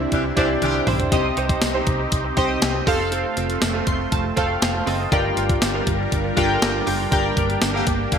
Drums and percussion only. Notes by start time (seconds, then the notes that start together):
0.12 kick, closed hi-hat
0.37 kick, closed hi-hat
0.62 closed hi-hat, high tom
0.87 mid tom, open hi-hat
1.00 closed hi-hat, floor tom
1.12 kick, closed hi-hat
1.37 closed hi-hat
1.49 kick, closed hi-hat
1.62 snare, closed hi-hat, tambourine
1.87 kick, closed hi-hat
2.12 kick, closed hi-hat
2.37 kick, closed hi-hat
2.62 snare, closed hi-hat, tambourine
2.87 kick, open hi-hat
3.12 closed hi-hat
3.37 closed hi-hat
3.50 closed hi-hat
3.62 snare, closed hi-hat, tambourine
3.87 kick, closed hi-hat
4.12 kick, closed hi-hat
4.37 kick, closed hi-hat
4.62 snare, closed hi-hat, tambourine
4.87 open hi-hat
5.12 kick, closed hi-hat
5.37 closed hi-hat
5.50 kick, closed hi-hat
5.62 snare, closed hi-hat, tambourine
5.87 kick, closed hi-hat
6.12 kick, closed hi-hat
6.37 kick, closed hi-hat
6.62 snare, closed hi-hat, tambourine
6.87 open hi-hat
7.12 kick, closed hi-hat
7.37 kick, closed hi-hat
7.50 closed hi-hat
7.62 snare, closed hi-hat, tambourine
7.87 kick, closed hi-hat
8.12 kick, closed hi-hat